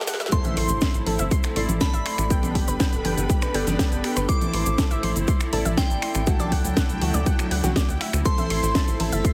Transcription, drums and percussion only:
0.01 snare
0.07 snare, open hi-hat, shaker
0.14 snare
0.20 snare, closed hi-hat, shaker
0.26 snare
0.32 kick, closed hi-hat, shaker
0.44 closed hi-hat, high conga, low conga, shaker
0.57 open hi-hat
0.68 closed hi-hat, shaker
0.81 kick, snare, closed hi-hat, shaker
0.94 closed hi-hat, shaker
1.06 open hi-hat, high conga
1.19 closed hi-hat, shaker
1.31 kick, closed hi-hat, shaker
1.43 finger snap, closed hi-hat, shaker
1.56 open hi-hat, low conga
1.69 closed hi-hat, high conga, shaker
1.81 kick, snare, closed hi-hat, shaker
1.93 closed hi-hat, shaker
2.06 finger snap, open hi-hat
2.18 finger snap, closed hi-hat, shaker
2.30 kick, closed hi-hat, shaker
2.43 closed hi-hat, high conga, low conga, shaker
2.55 kick, open hi-hat
2.68 closed hi-hat, shaker
2.80 kick, snare, closed hi-hat, shaker
2.93 closed hi-hat, shaker
3.05 open hi-hat, high conga
3.17 closed hi-hat, low conga, shaker
3.30 kick, closed hi-hat, shaker
3.42 finger snap, closed hi-hat, low conga, shaker
3.54 open hi-hat
3.67 snare, closed hi-hat, high conga, shaker
3.79 kick, snare, closed hi-hat, shaker
3.92 closed hi-hat, shaker
4.04 finger snap, open hi-hat
4.16 finger snap, closed hi-hat, shaker
4.29 kick, closed hi-hat, shaker
4.41 closed hi-hat, high conga, low conga, shaker
4.54 open hi-hat
4.66 closed hi-hat, shaker
4.78 kick, snare, closed hi-hat, shaker
4.91 closed hi-hat, shaker
5.03 open hi-hat, high conga
5.16 closed hi-hat, shaker
5.28 kick, closed hi-hat, shaker
5.40 finger snap, closed hi-hat, shaker
5.53 open hi-hat, low conga
5.65 closed hi-hat, high conga, shaker
5.77 kick, snare, closed hi-hat, shaker
5.90 closed hi-hat, shaker
6.02 finger snap, open hi-hat
6.14 finger snap, closed hi-hat, shaker
6.27 kick, closed hi-hat, shaker
6.40 closed hi-hat, high conga, low conga, shaker
6.52 kick, open hi-hat
6.65 closed hi-hat, shaker
6.77 kick, snare, closed hi-hat, shaker
6.89 closed hi-hat, shaker
7.01 open hi-hat, high conga
7.14 closed hi-hat, low conga, shaker
7.26 kick, closed hi-hat, shaker
7.39 finger snap, closed hi-hat, low conga, shaker
7.51 open hi-hat
7.64 snare, closed hi-hat, high conga, shaker
7.76 kick, snare, closed hi-hat, shaker
7.89 closed hi-hat, shaker
8.01 finger snap, open hi-hat
8.13 finger snap, closed hi-hat, shaker
8.25 kick, closed hi-hat, ride, shaker
8.38 closed hi-hat, high conga, low conga, shaker
8.50 open hi-hat, ride
8.63 closed hi-hat, shaker
8.75 kick, snare, closed hi-hat, ride, shaker
8.88 closed hi-hat, shaker
9.00 open hi-hat, ride, high conga
9.12 closed hi-hat, shaker
9.25 kick, closed hi-hat, ride, shaker

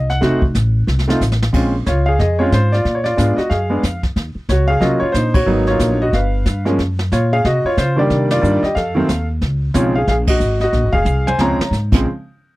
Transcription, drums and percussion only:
0.10 snare
0.22 brush sweep, kick, snare
0.42 kick
0.55 kick, snare, hi-hat pedal
0.88 snare
0.99 snare
1.10 snare
1.21 snare, hi-hat pedal
1.32 snare
1.42 snare
1.54 brush sweep, kick, snare, crash
1.86 kick, snare, hi-hat pedal
2.19 brush sweep, kick, snare
2.52 kick, snare, hi-hat pedal
2.73 snare
2.85 brush sweep, kick, snare
3.05 snare
3.18 kick, snare, hi-hat pedal
3.38 snare
3.51 brush sweep, kick, snare
3.83 kick, snare, hi-hat pedal
4.03 kick, snare
4.16 brush sweep, kick, snare
4.49 kick, snare, hi-hat pedal
4.81 brush sweep, kick, snare
5.14 kick, snare, hi-hat pedal
5.34 kick, crash
5.47 brush sweep
5.67 snare
5.79 kick, snare, hi-hat pedal
6.13 brush sweep, kick, snare
6.46 kick, snare, hi-hat pedal
6.66 snare
6.79 brush sweep, kick, snare
6.99 snare
7.12 kick, snare, hi-hat pedal
7.45 brush sweep, kick, snare
7.77 kick, snare, hi-hat pedal
8.10 brush sweep, kick, snare
8.31 snare, ride
8.44 hi-hat pedal
8.64 snare
8.76 brush sweep, kick, snare
9.09 kick, snare, hi-hat pedal
9.41 brush sweep, kick, snare
9.74 kick, snare, hi-hat pedal
10.08 brush sweep, kick, snare
10.27 kick, crash
10.40 hi-hat pedal
10.60 snare
10.73 brush sweep, kick, snare
10.93 kick
11.06 hi-hat pedal, high tom
11.28 high tom
11.39 snare
11.61 snare
11.73 snare, hi-hat pedal
11.92 kick, snare, crash

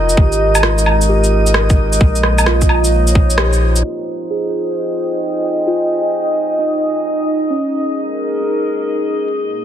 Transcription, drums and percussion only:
0.09 shaker
0.17 kick
0.32 shaker
0.55 low woodblock, shaker
0.63 cross-stick
0.78 shaker
0.86 low woodblock
1.01 shaker
1.24 shaker
1.47 shaker
1.54 cross-stick
1.70 kick, shaker
1.93 shaker
2.01 kick
2.16 shaker
2.23 cross-stick
2.38 low woodblock, shaker
2.46 cross-stick
2.61 kick, shaker
2.69 low woodblock
2.84 shaker
3.07 shaker
3.15 kick
3.30 shaker
3.38 cross-stick
3.53 shaker
3.76 shaker

